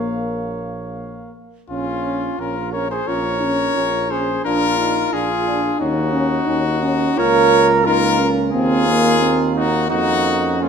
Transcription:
Already playing: A#1 A#3 C#5 F5
1.69 A#1 C#4 F4
2.04 C#4
2.38 A#1 C#4 F4 A#4
2.72 C#4 A#4 C#5
2.90 G#4 C5
3.07 A#1 C#4 F4 A#4 C#5
3.42 C#4
3.76 A#1 C#4 F4
4.10 C#4 G#4 C5
4.45 A#1 D4 F4 A#4
4.79 D4 D#4
5.12 A#1 D4 F4 G#4
5.46 D4
5.78 D#2 C#4 D#4 F#4
6.13 C#4
6.47 D#2 C#4 D#4
6.82 C#4
7.18 C#2 A#3 F4 A#4 C#5
7.86 A#3 D#4 F4 A#4
8.20 C#4
8.52 D#2 A#3 C4 F4 G#4
8.88 A#3
9.21 C4
9.55 D#4 F#4
9.89 F2 A#3 C#4 D#4 F#4
10.60 A#3 C#4 F4

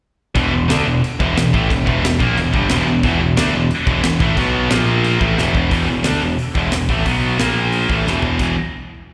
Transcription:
0.35 E1 E2 B2 E3, kick, crash
0.52 E1 E2 B2
0.68 D2 D3 A3 D4, snare, crash
0.85 E1 E2 B2
1.04 crash
1.19 E1 E2 B2 E3, kick
1.37 E1 E2 B2, snare, crash
1.53 A1 A2 E3 A3, kick
1.70 E1 E2 B2, kick, crash
1.85 E1 E2 B2 E3, kick
2.03 E1 E2 B2, snare, crash
2.19 A#1 A#2 F3 A#3, kick
2.36 E1 E2 B2, crash
2.53 G1 G2 D3 G3, kick
2.69 E1 E2 B2 E3, snare, crash
2.86 E1 E2 B2
3.03 E1 E2 B2 E3, kick, crash
3.19 E1 E2 B2
3.37 D2 D3 A3 D4, snare, crash
3.53 E1 E2 B2
3.71 crash
3.86 E1 E2 B2 E3, kick
4.03 E1 E2 B2, snare, crash
4.19 A1 A2 E3 A3, kick
4.36 B1 B2 F#3 B3, kick, crash
4.70 A#1 A#2 F3 A#3, snare, crash
5.04 crash
5.21 A1 A2 E3 A3, kick
5.37 E1 E2 B2 E3, snare
5.55 kick
5.71 E1 E2 B2 E3, kick, open hi-hat
5.88 E1 E2 B2
6.03 D2 D3 A3 D4, snare, open hi-hat
6.21 E1 E2 B2
6.38 open hi-hat
6.55 E1 E2 B2 E3, kick
6.72 E1 E2 B2, snare, open hi-hat
6.89 A1 A2 E3 A3, kick
7.05 B1 B2 F#3 B3, kick, open hi-hat
7.37 A#1 A#2 F3 A#3, snare, open hi-hat
7.72 open hi-hat
7.89 A1 A2 E3 A3, kick
8.06 E1 E2 B2 E3, snare
8.22 floor tom
8.39 E1 E2 B2 E3, kick, crash

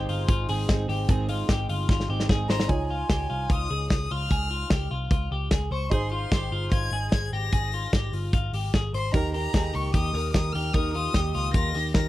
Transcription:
Already playing: G#3 C4 D#4 G#4 C5
0.09 G1 F4, open hi-hat
0.28 G#1 F4, kick, closed hi-hat
0.49 G#1 G#3 C4 D#4 G#4, open hi-hat
0.69 G#1 G#3 C4 D#4 G#4, kick, snare, closed hi-hat
0.88 G#1 G#3 C4 D#4 G4 G#4, open hi-hat
1.09 G#1 G#2 D#3 G#3 C4 D#4 G#4, kick, closed hi-hat
1.29 G#3 C4 D#4 F4 G#4, open hi-hat
1.48 G#1 G#3 C4 D#4 G4 G#4, kick, snare, closed hi-hat
1.69 G1 F4, open hi-hat
1.89 G#1 F4, kick, snare
2.00 snare
2.08 G#1 G#3 C4 D#4 G4 G#4
2.20 snare
2.29 G#1 G#3 C4 D#4 G#4, kick, snare
2.49 G#1 G#3 C4 D#4 G#4 C5 A#5, snare
2.60 snare
2.67 C#2 D#4 F4 G#4 C#5 G#5, kick, closed hi-hat
2.88 F4 G#5
3.09 C#2 G4, kick, snare, closed hi-hat
3.30 C2 F4
3.50 C#2 F4 D#6, kick, closed hi-hat
3.71 C#2 G#4
3.90 C#2 D#6, kick, snare, closed hi-hat
4.11 C#2 F4 F6
4.31 C#2 G#4, kick, closed hi-hat
4.51 F4
4.70 C#2 G4, kick, snare, closed hi-hat
4.91 C2 F4
5.11 C#2 F4, kick, closed hi-hat
5.31 C#2 G4
5.51 C#2 G#4, kick, snare, closed hi-hat
5.71 C#2 C5 C#6
5.90 G#1 D#4 G#4 C5 C6, kick, closed hi-hat
6.12 F4 C6
6.32 G#1 G4, kick, snare, closed hi-hat
6.51 G1 F4
6.71 G#1 F4 G#6, kick, closed hi-hat
6.91 G#1 G#4
7.12 G#1 G#6, kick, snare, closed hi-hat
7.32 G#1 G4 A#6
7.52 G#1 G#4, kick, closed hi-hat
7.72 F4, open hi-hat
7.93 G#1 G4, kick, snare, closed hi-hat
8.13 G1 F4, open hi-hat
8.33 G#1 F4, kick, closed hi-hat
8.53 G#1 G4, open hi-hat
8.74 G#1 G#4, kick, snare, closed hi-hat
8.93 G#1 C5 C6, open hi-hat
9.12 D#2 D#3 A#3 D#4 G4 A#4 A#5, kick, closed hi-hat
9.33 D#4 G4 A#4 A#5, open hi-hat
9.53 D#2 D#3 A#3 D#4 G4 G#4 A#4, kick, snare, closed hi-hat
9.74 C#2 G4 C#6, open hi-hat
9.93 D#2 A#3 D#4 G4 A#4 D#6, kick, closed hi-hat
10.13 D#2 D#4 A#4, open hi-hat
10.33 D#2 D#3 A#3 D#4 G4 A#4 D#6, kick, snare, closed hi-hat
10.52 D#2 D#4 G4 A#4 F6, open hi-hat
10.73 D#2 D#3 A#3 D#4 G4 A#4 D#6, kick, closed hi-hat
10.93 D#4 F4 G4 A#4 D#6, open hi-hat
11.13 D#2 D#3 A#3 D#4 G4 A#4, kick, snare, closed hi-hat
11.34 C#2 F4 D#6, open hi-hat
11.53 D#2 A#3 D#4 F4 G4 A#4 A#6, kick, closed hi-hat
11.73 D#2 D#4 G4 A#4, open hi-hat
11.94 D#2 D#3 A#3 D#4 G4 A#4 A#6, kick, snare, closed hi-hat

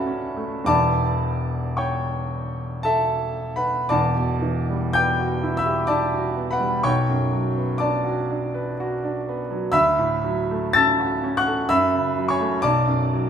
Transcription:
Already playing: D2 A3 C#4 F#4 A4 B4 D5 E5 F#5 A5 B5 D6
0.06 C#4
0.37 A3
0.64 E1 E2 G3 B3 E4 D5 A5 D6
1.77 C#5 G5 C#6
2.83 A4 E5 A5
3.56 B4 F#5 B5
3.89 E1 E2 D5 A5 D6
4.17 B2
4.42 E3
4.70 G3
4.93 B3 G5 D6 G6
5.20 F#4
5.43 E4
5.57 E5 B5 E6
5.66 G4
5.87 E4 D5 A5 D6
6.14 F#4
6.36 B3
6.51 B4 F#5 B5
6.61 G3
6.83 B1 C#5 G5 C#6
7.10 F#2
7.32 F#3
7.58 B3
7.78 D4 D5 A5 D6
8.05 F#4
8.31 D4
8.55 B4
8.80 F#4
9.04 D4
9.29 B3
9.51 F#3
9.72 D2 E5 B5 E6
9.99 A2
10.24 F#3
10.51 A3
10.73 C#4 A5 E6 A6
11.00 F#4
11.24 C#4
11.37 F#5 C#6 F#6
11.47 A4
11.69 F#2 E5 B5 E6
11.94 C#3
12.18 F#3
12.28 C#5 G#5 C#6
12.40 A3
12.62 B1 D5 A5 D6
12.87 F#2
13.14 F#3

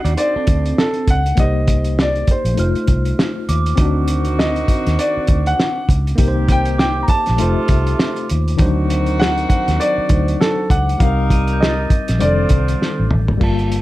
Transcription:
Already playing: C4 D4 D#4 F#4 F#5 C7
0.05 D#2 F#4 D5, closed hi-hat
0.17 D#4 C5 D5, closed hi-hat
0.36 C4 A4, muted fingered electric bass stroke
0.47 D2, kick, closed hi-hat
0.66 closed hi-hat
0.78 A4, snare
0.94 closed hi-hat
1.08 C#2 F#5, kick, closed hi-hat
1.26 closed hi-hat
1.35 C2 A#3 D#4, kick, closed hi-hat
1.40 G4 C5 D#5
1.68 kick, closed hi-hat
1.84 closed hi-hat
1.99 D5, snare
2.15 closed hi-hat
2.27 C5, muted fingered electric bass stroke, kick, closed hi-hat
2.45 A#1, closed hi-hat
2.54 F1 A3 D#4, closed hi-hat
2.59 F4 C5 F6
2.75 muted fingered electric bass stroke, closed hi-hat
2.87 C2, kick, closed hi-hat
3.05 closed hi-hat
3.19 snare
3.49 D#2 D6, closed hi-hat
3.66 closed hi-hat
3.75 D2 D#3 C4 D#4 F#4, kick, closed hi-hat
3.80 D4 F#4
4.08 closed hi-hat
4.25 closed hi-hat
4.39 D#5, snare
4.56 closed hi-hat
4.68 muted fingered electric bass stroke, kick, closed hi-hat
4.87 D#2, snare, closed hi-hat
4.99 D5, closed hi-hat
5.17 muted fingered electric bass stroke
5.27 D2, kick, closed hi-hat
5.46 F#5, closed hi-hat
5.60 snare
5.89 C#2, kick, closed hi-hat
6.07 closed hi-hat
6.16 C2 D#3 A#3 C4 D#4 G4, kick, closed hi-hat
6.22 A#4
6.28 C5
6.48 G5, kick, closed hi-hat
6.65 closed hi-hat
6.78 G5 D6, snare
7.03 A#5
7.08 A5, muted fingered electric bass stroke, kick, closed hi-hat
7.26 A#1, snare, closed hi-hat
7.36 C3 A3 D#4 F4, closed hi-hat
7.42 F1 C5
7.68 C2, kick, closed hi-hat
7.87 closed hi-hat
7.99 snare
8.16 closed hi-hat
8.30 D#2, closed hi-hat
8.48 closed hi-hat
8.56 D2 D#3 C4 D4 D#4 F#4, kick, closed hi-hat
8.62 F#3 C5
8.90 closed hi-hat
9.06 closed hi-hat
9.20 F#5, snare
9.38 closed hi-hat
9.49 F#5, muted fingered electric bass stroke, kick, closed hi-hat
9.68 D#2, snare, closed hi-hat
9.80 D5, closed hi-hat
9.98 muted fingered electric bass stroke
10.09 D2 F#3 D4 D#4 C5, kick, closed hi-hat
10.28 closed hi-hat
10.41 A4, snare
10.70 C#2 F#5 D6, kick, closed hi-hat
10.89 closed hi-hat
10.98 C2 G3 C4 D#4 A#4 F5, kick, closed hi-hat
11.04 A#4
11.30 D#7, kick, closed hi-hat
11.47 closed hi-hat
11.53 G6
11.61 D#5, snare
11.69 A6
11.90 muted fingered electric bass stroke, kick, closed hi-hat
12.08 A#1, snare, closed hi-hat
12.18 F1 D3 G3 C4 D4 F4 D5, closed hi-hat
12.23 D#3 A4
12.49 C2, kick, closed hi-hat
12.68 closed hi-hat
12.82 snare
12.99 A1
13.11 A1, mid tom
13.28 G#1, floor tom
13.38 G1 G3 A#3, kick, crash
13.42 F4 A5
13.59 closed hi-hat
13.72 closed hi-hat

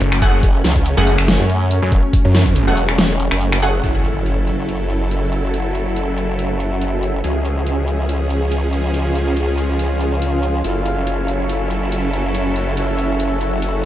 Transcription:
Already playing: F#3 A3 C#4
0.01 F#1, closed hi-hat
0.12 finger snap
0.22 A3 G#4 F#5, kick, closed hi-hat
0.33 F#1
0.43 F#1, kick, closed hi-hat
0.64 C#2, snare, closed hi-hat
0.76 kick
0.86 closed hi-hat
0.97 F#1 A3 G#4 F#5
1.07 closed hi-hat
1.18 F#1, finger snap
1.28 snare, closed hi-hat
1.40 F#2
1.50 closed hi-hat
1.71 closed hi-hat
1.82 F#2
1.92 F#1, kick, closed hi-hat
2.13 kick, closed hi-hat
2.25 F#2
2.35 snare, closed hi-hat
2.46 kick
2.56 closed hi-hat
2.67 E1 A3 G#4 F#5
2.77 closed hi-hat
2.89 finger snap
2.98 snare, closed hi-hat
3.20 closed hi-hat
3.31 F#1, finger snap
3.41 closed hi-hat
3.52 finger snap
3.62 A3 G#4 F#5, closed hi-hat
3.84 F#1 F#3 E4 A4, closed hi-hat, impact
4.03 F#4, closed hi-hat
4.21 A4
4.26 closed hi-hat
4.47 E5, closed hi-hat
4.69 closed hi-hat
4.90 closed hi-hat
5.11 closed hi-hat
5.33 closed hi-hat
5.54 closed hi-hat
5.75 closed hi-hat
5.96 closed hi-hat
6.18 closed hi-hat
6.39 closed hi-hat
6.60 closed hi-hat
6.81 closed hi-hat
7.03 closed hi-hat
7.24 C#2 F3 C#4 G#4, closed hi-hat
7.34 F4
7.45 closed hi-hat
7.67 closed hi-hat
7.79 G#4
7.88 closed hi-hat
7.96 F5
8.09 closed hi-hat
8.30 closed hi-hat
8.52 closed hi-hat
8.73 closed hi-hat
8.94 closed hi-hat
9.15 closed hi-hat
9.37 closed hi-hat
9.58 closed hi-hat
9.79 closed hi-hat
10.01 closed hi-hat
10.22 closed hi-hat
10.43 closed hi-hat
10.64 F#1 F#3 E4 A4, closed hi-hat
10.71 F#4
10.86 closed hi-hat
11.07 E5, closed hi-hat
11.28 A4, closed hi-hat
11.49 closed hi-hat
11.71 closed hi-hat
11.92 closed hi-hat
12.13 closed hi-hat
12.35 closed hi-hat
12.56 closed hi-hat
12.77 closed hi-hat
12.98 closed hi-hat
13.20 closed hi-hat
13.41 closed hi-hat
13.62 closed hi-hat

